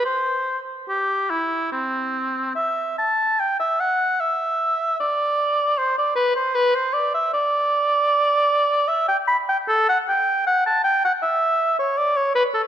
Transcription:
\new Staff \with { instrumentName = "Oboe" } { \time 4/4 \key c \major \tempo 4 = 76 c''8. r16 g'8 e'8 c'4 e''8 a''8 | \key d \mixolydian g''16 e''16 fis''8 e''4 d''4 c''16 d''16 b'16 c''16 | b'16 c''16 d''16 e''16 d''2 e''16 g''16 b''16 g''16 | a'16 fis''16 g''8 fis''16 a''16 g''16 fis''16 e''8. cis''16 d''16 cis''16 b'16 a'16 | }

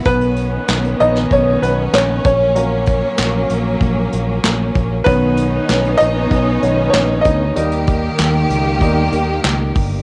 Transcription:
<<
  \new Staff \with { instrumentName = "Grand piano" } { \time 4/4 \key b \major \tempo 4 = 96 <b b'>4. <dis' dis''>8 <cis' cis''>8 <b b'>8 <cis' cis''>8 <cis' cis''>8~ | <cis' cis''>4. r2 r8 | b'4. <dis' dis''>4. <cis' cis''>8 <dis' dis''>8~ | <dis' dis''>2. r4 | }
  \new Staff \with { instrumentName = "Grand piano" } { \time 4/4 \key b \major r4. <dis b cis'>2 r8 | <fis ais cis'>1 | <dis b cis'>8 r2 <dis b cis'>8 r4 | <g ais dis'>4. r8 <g ais dis'>8 r4. | }
  \new Staff \with { instrumentName = "String section" } { \time 4/4 \key b \major << { cis'1~ | cis'1 | cis'1 | g'1 | } \\ { <dis b>2.~ <dis b>8 <fis ais>8~ | <fis ais>1 | <b dis'>1 | <dis ais>1 | } >> }
  \new Staff \with { instrumentName = "Fingered electric bass" } { \clef bass \time 4/4 \key b \major b,,4 b,,8 ais,,8 b,,8 b,,8 ais,,8 ais,,8~ | ais,,4 ais,,8 ais,,8 ais,,8 ais,,8 ais,,8 ais,,8 | b,,4 b,,8 ais,,8 b,,8 b,,8 ais,,8 d,8 | dis,4 dis,8 cis,8 dis,8 dis,8 cis,8 g,,8 | }
  \new DrumStaff \with { instrumentName = "Drums" } \drummode { \time 4/4 <hh bd>16 hh16 hh8 <hc hh sn>16 hh16 hh16 sn16 <hh bd>8 hh8 <hc hh sn>8 <hh bd>8 | hh8 <hh bd>8 <hc hh sn>8 hh8 <hh bd>8 hh8 <hc hh sn>8 <hh bd>8 | <hh bd>8 hh8 <hc hh sn>16 hh16 hh8 <hh bd>8 hh8 <hc hh sn>8 <hh bd>8 | hh16 hh16 <hh bd>8 <hc hh sn>8 hh8 <hh bd>8 hh8 <hc hh sn>8 <hho bd>8 | }
>>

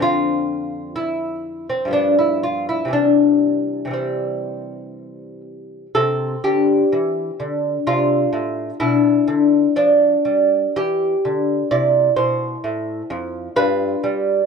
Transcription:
<<
  \new Staff \with { instrumentName = "Lute" } { \time 3/4 \key c \major \tempo 4 = 62 f'4 e'8. c'16 d'16 e'16 f'16 e'16 | d'4 c'4. r8 | a'8 g'4. f'4 | e'4 d'4 g'4 |
d''8 c''4. b'4 | }
  \new Staff \with { instrumentName = "Lute" } { \clef bass \time 3/4 \key c \major << { <f, d c'>2 <g, f b>4 | <c e g>4 <c e g>2 | c'2 d'4 | d'2. |
e'2 f'4 | } \\ { r2. | r2. | c8 d8 e8 d8 c8 a,8 | b,8 d8 f8 g8 e8 d8 |
c8 b,8 a,8 f,8 g,8 g8 | } >> }
>>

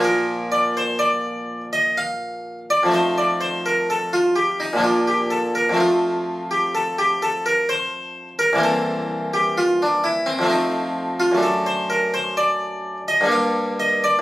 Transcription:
<<
  \new Staff \with { instrumentName = "Harpsichord" } { \time 3/4 \key bes \major \tempo 4 = 63 bes'8 d''16 c''16 d''8. ees''16 f''8. d''16 | c''16 d''16 c''16 bes'16 a'16 f'16 g'16 ees'16 f'16 g'16 a'16 bes'16 | f'8. g'16 a'16 g'16 a'16 bes'16 c''8. bes'16 | a'8. g'16 f'16 d'16 e'16 c'16 ees'8. f'16 |
\key d \phrygian a'16 c''16 bes'16 c''16 d''8. ees''16 f''8 ees''16 d''16 | }
  \new Staff \with { instrumentName = "Harpsichord" } { \time 3/4 \key bes \major <bes, f bes f'>2. | <f, f a ees'>2 <bes, f bes d'>4 | <f, f a c'>2. | <c, e bes c'>2 <f, f a c'>4 |
\key d \phrygian <fis, a d'>2 <g, g bes d'>4 | }
>>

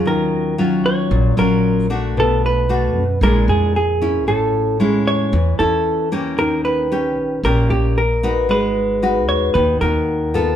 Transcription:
<<
  \new Staff \with { instrumentName = "Hollow-body jazz guitar" } { \time 4/4 \key dis \minor \tempo 4 = 114 ais'4 r8 cis''4 ais'4 r8 | a'8 b'4. ais'8 gis'8 gis'4 | a'4 r8 cis''4 a'4 r8 | ais'8 b'4. ais'8 g'8 ais'4 |
b'4. cis''8 b'8 ais'4. | }
  \new Staff \with { instrumentName = "Nylon-string guitar" } { \time 4/4 \key dis \minor << { <fis cis' eis'>4 <fis cis' eis'>4. <fis cis' eis'>4 <a d' fis'>8~ | <a d' fis'>4 <a d' fis'>8 r8 <gis d' e'>4 r8 <cis' e'>8~ | <cis' e'>4 <gis cis' e'>4 r8 <cis' e'>4 <ais cis' g'>8~ | <ais cis' g'>4 <cis' g'>4 <ais cis' g'>4 r8 <dis' fis' b'>8~ |
<dis' fis' b'>4 <dis' fis' b'>4. <dis' fis'>4 <b eis' a'>8 | } \\ { dis2 ais,2 | b,2 ais,2 | a,2 e2 | dis2 ais,2 |
gis2 dis2 | } >> }
  \new Staff \with { instrumentName = "Upright bass" } { \clef bass \time 4/4 \key dis \minor dis,4. ais,,8 ais,,8 ais,,4. | b,,4. fis,8 ais,,8 eis,4. | a,,4. e,8 e,8 e,4. | dis,4. ais,,8 ais,,8 ais,,4. |
gis,,4. dis,8 dis,8 dis,4. | }
>>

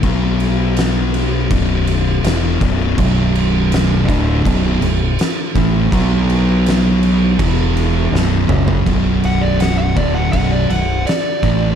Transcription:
<<
  \new Staff \with { instrumentName = "Lead electric guitar" } { \time 4/4 \key b \minor \tempo 4 = 82 r1 | r1 | r1 | r8 fis''16 d''16 fis''16 fis''16 d''16 fis''16 fis''16 d''16 fis''8 d''4 | }
  \new Staff \with { instrumentName = "Distorted electric guitar" } { \clef bass \time 4/4 \key b \minor <b, fis b>2 <b,, fis, b,>4 <e, b, e>8 <b,, fis, b,>8 | <b,, fis, b,>4. <d, a, d>8 <b,, fis, b,>8 <b,, fis,>8 r8 <a, e a>8 | <b, fis b>2 <e, b, e>4 <b,, fis, b,>8 <fis, cis fis>8 | <b,, fis, b,>4. <d, a, d>8 <b,, fis, b,>8 <b,, fis,>8 r8 <a, e a>8 | }
  \new Staff \with { instrumentName = "Distorted electric guitar" } { \clef bass \time 4/4 \key b \minor r1 | <b,, fis, b,>4. <d, a, d>8 <b,, fis, b,>8 <b,, fis,>8 r8 <a, e a>8 | <b, fis b>2 <e, b, e>4 <b,, fis, b,>8 <fis, cis fis>8 | <b,, fis, b,>4. <d, a, d>8 <b,, fis, b,>8 <b,, fis,>8 r8 <a, e a>8 | }
  \new Staff \with { instrumentName = "Fingered electric bass" } { \clef bass \time 4/4 \key b \minor b,,2 b,,,4 e,,8 b,,,8 | b,,,4. d,,8 b,,,8 b,,,8 r8 a,,8 | b,,2 e,,4 b,,,8 fis,,8 | b,,,4. d,,8 b,,,8 b,,,8 r8 a,,8 | }
  \new DrumStaff \with { instrumentName = "Drums" } \drummode { \time 4/4 <cymc bd>8 cymc8 <cymc sn>8 cymc8 <cymc bd>8 cymc8 <cymc sn>8 <cymc bd>8 | <cymc bd>8 cymc8 <cymc sn>8 <cymc bd>8 <cymc bd>8 cymc8 <cymc sn>8 <cymc bd>8 | <cymc bd>8 cymc8 <cymc sn>8 cymc8 <cymc bd>8 cymc8 sn8 toml16 tomfh16 | <cymc bd>8 cymc8 <cymc sn>8 <cymc bd>8 <cymc bd>8 cymc8 <cymc sn>8 <cymc bd>8 | }
>>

